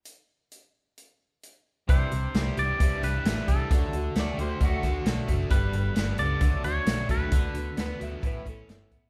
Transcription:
0.05 closed hi-hat
0.52 closed hi-hat
0.98 closed hi-hat
1.43 closed hi-hat
1.88 C2 C3 E3 G3 D4 G4 C5, kick, closed hi-hat
2.11 C2 G3 D4 G4, closed hi-hat
2.33 C2 E3 G3 D4 G4, snare, closed hi-hat
2.57 C2 E3 G3 D4 G4 D5, closed hi-hat
2.80 C2 C3 E3 G3 D4 G4, kick, closed hi-hat
3.03 C2 D4 G4 B4, snare, closed hi-hat
3.07 G3
3.25 A1 E3 G3 D4, snare, closed hi-hat
3.30 G4
3.38 snare
3.47 C2 G3 G4 A4, kick, closed hi-hat
3.52 G3 D4
3.71 D2 D3 F#3 A3 D4 F#4, kick, closed hi-hat
3.93 D2 D4 F#4, closed hi-hat
3.98 A3
4.15 D2 F#3 A3 D4, snare, closed hi-hat
4.19 F#4 D5
4.37 D2 D3 D4 F#4 G4 C5, closed hi-hat
4.42 A3
4.60 D2 D3 F#3 A3 D4 F#4, kick, closed hi-hat
4.83 D2 A3 D4 F#4, kick, snare, closed hi-hat
5.06 B1 D3 F#3 A3 D4 F#4, snare, closed hi-hat
5.28 F#1 A3 D4 F#4, kick, closed hi-hat
5.32 A3
5.50 G1 G3 B3 D4 B4, kick, closed hi-hat
5.54 A4
5.73 G1 D4 A4, closed hi-hat
5.78 B3
5.96 G1 G3 B3 D4, snare, closed hi-hat
6.00 A4
6.18 C#2 G3 A4 D5, closed hi-hat
6.22 B3 D4
6.41 D2 D3 F#3 A3 D4 F#4, kick, closed hi-hat
6.64 D2 A3 D4 F#4 C#5, closed hi-hat
6.86 B1 F#3 A3 D4 F#4, snare, closed hi-hat
7.09 D2 A3 D4 F#4 B4, kick, closed hi-hat
7.32 D2 D3 B3 D4 F#4, kick, closed hi-hat
7.54 D2 B3 D4 F#4, closed hi-hat
7.76 D2 D3 B3 D4 F#4, snare, closed hi-hat
7.80 B4
7.99 D2 D3 B3 D4 F#4, closed hi-hat
8.03 E5
8.22 A1 A2 E3 B3 C#4 E4, kick, closed hi-hat
8.27 B4
8.43 A1 B3 C#4 E4, kick, closed hi-hat
8.49 A4
8.67 G1 E3 B3 C#4 E4, snare, closed hi-hat
8.90 A1 B3 C#4 E4, kick, closed hi-hat

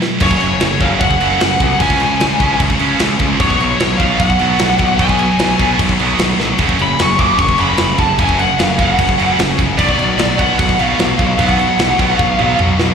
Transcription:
0.02 B2 F#3, snare
0.20 F#1 F#2 C#3 F#3 C#5, kick, crash
0.29 F#2 C#3, kick
0.36 F#2 C#3, crash
0.42 F#1 F#2 C#3
0.52 F#2 C#3
0.60 F#1 F#2 C#3, snare, crash
0.67 F#2 C#3
0.75 F#2 C#3
0.80 F#1 F#2 F#3 F5, kick, crash
0.84 C#3
0.91 F#2 C#3
0.97 F#2 C#3 F#5, kick, crash
1.01 F#1 F#2
1.08 F#2 C#3, kick
1.16 C#3
1.20 F#1 F#2 C#3 F#3, crash
1.29 F#2 C#3
1.36 F#2
1.40 F#1 F#2 C#3, snare, crash
1.48 F#2 C#3
1.56 C2 F#2 C#3, kick, crash
1.63 F#2 C#3
1.71 F#2 C#3
1.80 C#2 C#3 F3 G#3 C#4 G#5, kick, crash
1.89 C#3 F3, kick
1.96 C#3 F3, crash
2.01 C#3 F3 G#3
2.12 C#3 F3
2.19 C#2 C#3 F3 G#3, snare, crash
2.26 C#3 F3
2.34 C#3 F3
2.40 C#2 C#3 F3 G#3 C#4, kick, crash
2.49 C#3 F3
2.57 C#2 C#3 F3, kick, crash
2.61 C#3 F3 G#3
2.70 C#3 F3, kick
2.79 C#2 C#3 F3 G#3 C#4, crash
2.88 C#3 F3
2.95 C#3 F3
2.99 C#2 C#3 F3 G#3, snare, crash
3.09 C#3 F3
3.18 C#2 C#3 F3 G#3, kick, crash
3.25 C#3 F3
3.32 C#3 F3
3.39 B1 B2 F#3 B3 C#5, kick, crash
3.45 B2 F#3
3.50 B2, kick
3.55 F#3
3.60 B1 B2 F#3, crash
3.70 B2 F#3
3.76 B2 F#3
3.80 B1 B2, snare, crash
3.84 B2 F#3
3.92 B2 F#3
3.98 B1 B2 F#3 B3 F5, kick, crash
4.08 B2 F#3
4.14 B2 F#3
4.18 B1 F#5, kick, crash
4.23 B2 F#3
4.30 B2 F#3, kick
4.39 B1 B2 F#3 B3, crash
4.45 B2 F#3
4.53 B2 F#3
4.59 B1 B2 F#3, snare, crash
4.69 B2 F#3
4.75 B2 F#3, crash
4.79 B1 B2, kick
4.85 F#3
4.92 B2 F#3
4.98 B1 B2 F#3 B3 G#5, kick, crash
5.08 B2 F#3, kick
5.15 B2 F#3, crash
5.23 B2 F#3
5.31 B2 F#3
5.38 B1 B2 F#3, snare, crash
5.45 B2 F#3
5.53 B2 F#3
5.59 B1 B2 F#3 B3, kick, crash
5.69 B2 F#3
5.76 B1 B2 F#3, kick, crash
5.80 B2 F#3
5.84 B2
5.89 B2 F#3, kick
5.98 B1 B2 F#3 B3, crash
6.06 B2 F#3
6.14 B2 F#3
6.19 B1 B2 F#3, snare, crash
6.29 B2 F#3
6.36 B1 B2 F#3, snare
6.40 B2
6.45 B2 F#3
6.52 B2 F#3
6.58 F#1 F#2 C#3 F#3, kick, crash
6.65 F#2 C#3
6.69 F#2, kick
6.74 C#3
6.79 F#1 F#2 C#3 B5, crash
6.88 F#2 C#3
6.96 F#2 C#3, snare, crash
7.00 F#1 C#3 C#6
7.04 F#2
7.12 F#2 C#3
7.18 F#1 F#2 C#3 F#3 D6, kick, crash
7.26 F#2 C#3
7.33 F#2 C#3
7.39 F#1 F#2 C#3 C#6, kick, crash
7.49 F#2 C#3, kick
7.56 F#2 C#3 F#3, crash
7.60 F#1 F#2 B5
7.64 C#3
7.71 F#2 C#3
7.77 F#1 F#2 C#3, snare, crash
7.87 F#2 C#3
7.95 F#1 F#2 C#3, crash
7.99 F#2 A5, kick
8.04 C#3
8.10 F#2 C#3
8.18 F#1 F#2 C#3 F#3 G#5, kick, crash
8.26 F#2 C#3, kick
8.33 F#2 C#3
8.39 F#2 C#3 F#5, crash
8.48 F#2 C#3
8.56 F#1 F#2 C#3 F5, crash
8.60 snare
8.64 F#2 C#3
8.72 F#2 C#3
8.79 F#1 F#2 C#3 F#3 F#5, kick, crash
8.87 F#2 C#3
8.95 F#1 F#2 C#3, kick, crash
9.02 F#2 C#3
9.09 F#2 C#3, kick
9.18 F#1 F#2 C#3 F#3, crash
9.25 F#2 C#3
9.32 F#2 C#3
9.39 F#1 F#2 C#3, snare, crash
9.48 F#2 C#3
9.55 F#1 F#2 C#3, kick, crash
9.63 F#2 C#3
9.71 F#2 C#3
9.78 B1 B2 F#3 B3 D5, kick, crash
9.85 B2 F#3, kick
9.93 B2 F#3
9.98 B1 B2 F#3, crash
10.08 B2 F#3
10.15 B1 B2 F#3, crash
10.20 B2 F#3, snare
10.31 B2 F#3
10.38 B1 B2 F#3 B3 F#5, kick, crash
10.46 B2 F#3
10.52 B2 F#3
10.59 B1 B2 F#3 F#5, kick, crash
10.68 B2 F#3, kick
10.76 B1 B2 F#3 F5, crash
10.80 B2 F#3 B3
10.91 B2 F#3
10.98 B1 B2 F#3, snare, crash
11.06 B2 F#3
11.13 B2 F#3
11.19 B1 B2 F#3, kick, crash
11.29 B2 F#3
11.37 B1 B2 F#3 B3 F#5, kick, crash
11.45 B2 F#3
11.49 B2, kick
11.54 F#3
11.59 B2 F#3, crash
11.69 B2 F#3
11.76 B1 B2 F#3, snare, crash
11.83 B2 F#3
11.91 B2 F#3
11.99 B1 B2 F#3 B3, kick, crash
12.06 B2 F#3
12.16 B1 B2 F#3 F5, kick
12.22 B2 F#3
12.31 B2 F#3
12.37 B1 B2 F#3 B3, mid tom
12.46 B2 F#3
12.52 B2 F#3
12.59 B1 B2 F#3, mid tom
12.68 B2 F#3
12.76 B1 B2 F#3, snare
12.84 B2 F#3
12.91 B2

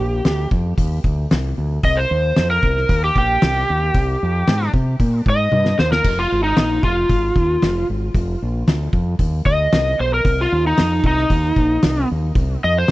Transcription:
Already playing: G4
0.00 A#1
0.25 D2, snare, open hi-hat
0.51 F2, kick
0.78 D#2, kick, open hi-hat
1.04 D2, kick
1.31 C2, snare, open hi-hat
1.58 D2
1.83 C2 D#5, kick, open hi-hat
1.97 C5
2.11 D#2
2.36 F2, snare, open hi-hat
2.51 A#4
2.63 C2, kick
2.77 snare
2.89 D#2, kick, open hi-hat
3.04 G4
3.16 A#1 G4, kick
3.42 C2, snare, open hi-hat
3.70 D#2
3.94 C2, kick, open hi-hat
4.23 F2
4.47 G#2, snare, open hi-hat
4.62 snare
4.74 C3, kick
5.00 A#2, kick, open hi-hat
5.26 G#2 D#5, kick
5.52 G2, high tom
5.65 snare
5.79 D#2 C5, snare
5.92 A#4, snare
6.04 F1, kick, open hi-hat, crash
6.19 F4
6.32 G#1
6.43 D#4
6.56 A#1, snare, open hi-hat
6.83 F1 F4, kick
7.09 G#1, kick, open hi-hat
7.36 D#2, kick
7.62 F1, snare, open hi-hat
7.90 G#1
8.14 F1, kick, open hi-hat
8.42 A#1
8.67 D2, snare, open hi-hat
8.93 F2, kick
9.19 D#2, kick, open hi-hat
9.45 D2 D#5, kick
9.72 C2, snare, open hi-hat
10.00 B1 C5
10.14 A#4
10.25 C2, kick, open hi-hat
10.41 F4
10.52 D#2
10.67 D#4
10.77 F2, snare, open hi-hat
11.04 C2 D#4, kick
11.17 snare
11.30 D#2, kick, open hi-hat
11.56 A#1, kick
11.82 C2, snare, open hi-hat
12.11 D#2
12.35 C2, kick, open hi-hat
12.64 F2 D#5
12.78 C5
12.88 open hi-hat

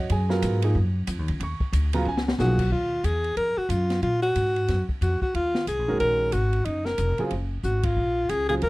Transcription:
0.10 F#2 G#4 G#5, ride
0.29 F#3 B3 F4 A#4, snare
0.42 G#2, hi-hat pedal, ride
0.62 F3 A#3 D#4 G#4, ride
0.75 F#2
1.07 F2, hi-hat pedal, ride
1.19 D#2
1.28 C#2, ride
1.40 D#2 C#6, ride
1.60 muted upright bass stroke, kick
1.73 D2, hi-hat pedal, ride
1.93 C#3 F#3 B3 F4 A#5, ride
2.05 C#2 G#5
2.17 snare
2.28 snare
2.39 B1 F3 A#3 D#4 F#4 G#4, snare, hi-hat pedal
2.59 kick, crash
2.71 D#2 F4
3.04 E2 G#4, hi-hat pedal, ride
3.24 ride
3.37 F2 A#4, ride
3.57 F#4, muted upright bass stroke
3.69 F#2 F4, hi-hat pedal, ride
3.90 snare, ride
4.02 A#2 F4, ride
4.22 F#4, ride
4.35 G#2, hi-hat pedal, ride
4.56 ride
4.68 F#2, snare, ride
4.89 muted upright bass stroke, kick
5.01 F2 F#4, hi-hat pedal, ride
5.22 F#4, muted upright bass stroke, kick
5.34 D#2 F4, ride
5.55 snare
5.67 C2 G#4, hi-hat pedal, ride
5.79 A#1
5.88 F#1 D#3 G#3 C#4 F#4 A#4
6.00 A#1 A#4, ride
6.32 G#1 F#4, hi-hat pedal, ride
6.53 ride
6.65 F#1 D#4, ride
6.85 A#4, snare
6.98 F1, hi-hat pedal, ride
7.18 C#3 F#3 C4 F4 G#4, ride
7.30 F#1, ride
7.63 G#1 F#4, hi-hat pedal
7.83 F4, kick, ride
7.96 A#1
8.29 C#2 G#4, hi-hat pedal, ride
8.49 C#3 F#3 C4 F4 G#4, ride
8.62 D#2 A#4, ride

